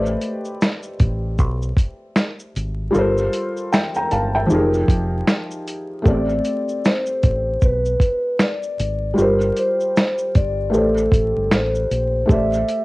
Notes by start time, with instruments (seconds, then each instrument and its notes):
Already playing: fingered electric bass A1, felt piano A3 G4 B4 C5 D5
0.06 shaker
0.21 closed hi-hat, shaker
0.45 shaker
0.62 finger snap, snare, shaker
0.83 shaker
1.00 fingered electric bass A1, kick, closed hi-hat, shaker
1.38 fingered electric bass B1, kick, shaker
1.62 shaker
1.76 kick, closed hi-hat, shaker
2.16 finger snap, snare, shaker
2.39 shaker
2.56 fingered electric bass G#1, closed hi-hat, shaker
2.91 felt piano G3 F4 A4, shaker
2.95 fingered electric bass G1, felt piano A#4 C5
3.18 shaker
3.33 closed hi-hat, shaker
3.57 shaker
3.72 felt piano E5 G5, finger snap, snare, shaker
3.95 felt piano G5 A#5, shaker
4.11 fingered electric bass G1, felt piano F5 A5, closed hi-hat, shaker
4.35 felt piano E5 G5
4.46 felt piano F3 D#4 G4, shaker
4.51 fingered electric bass F1, felt piano G#4 A#4
4.74 shaker
4.88 fingered electric bass F1, kick, closed hi-hat, shaker
5.27 finger snap, snare, shaker
5.51 shaker
5.68 closed hi-hat, shaker
6.02 felt piano A3 G4 A4, kick, shaker
6.06 fingered electric bass A1, felt piano C4 D5, vibraphone D5
6.29 shaker
6.45 closed hi-hat, shaker
6.68 shaker
6.85 vibraphone C5, finger snap, snare, shaker
7.06 shaker
7.23 fingered electric bass A1, kick, closed hi-hat, shaker
7.62 fingered electric bass B1, vibraphone B4, kick, shaker
7.86 shaker
8.00 kick, closed hi-hat, shaker
8.39 vibraphone D5, finger snap, snare, shaker
8.63 shaker
8.79 fingered electric bass G#1, closed hi-hat, shaker
9.14 felt piano G3 F4 G4
9.18 fingered electric bass G1, felt piano A#4 C5, vibraphone A#4, shaker
9.41 shaker
9.57 vibraphone C5, closed hi-hat, shaker
9.81 shaker
9.97 finger snap, snare, shaker
10.18 shaker
10.35 fingered electric bass G1, vibraphone D5, kick, closed hi-hat, shaker
10.70 felt piano A3 G4 A4, vibraphone B4
10.74 fingered electric bass A1, vibraphone A4, felt piano C5 D5, shaker
10.98 shaker
11.12 fingered electric bass A1, kick, closed hi-hat, shaker
11.37 fingered electric bass G1
11.51 fingered electric bass A1, vibraphone C5, finger snap, snare, shaker
11.75 shaker
11.91 fingered electric bass A#1, closed hi-hat, shaker
12.26 felt piano A3 G4 A4, kick
12.30 fingered electric bass A1, felt piano C5 D5, vibraphone E5, shaker
12.53 shaker
12.68 closed hi-hat, shaker